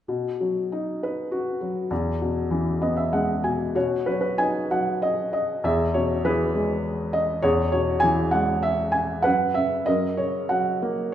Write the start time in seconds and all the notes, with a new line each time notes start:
0.08 B2
0.40 F#3
0.72 D#4
1.03 B4
1.32 F#4
1.61 F#3
1.91 E2
2.21 B2
2.51 E3
2.81 B3 D#5
2.97 E5
3.13 G#3 F#5
3.44 B2 G#5
3.75 B2 F#4 C#5
4.06 F#3 B4
4.11 C#5
4.21 B4
4.38 D#4 G#5
4.71 F#3 F#5
5.02 D#5
5.33 D#5
5.64 E2 G#4 E5
5.94 B2 C#5
6.24 E3 G#4 B4
6.55 G#3
7.13 D#5
7.42 E2 G#4 C#5
7.72 B2 C#5
8.00 E3 G#5
8.31 G#3 F#5
8.63 E5
8.92 G#5
9.22 F#2 B4 F#5
9.54 C#3 E5
9.86 F#2 A#4 D#5
10.17 C#3 C#5
10.49 F#3 F#5
10.82 A#3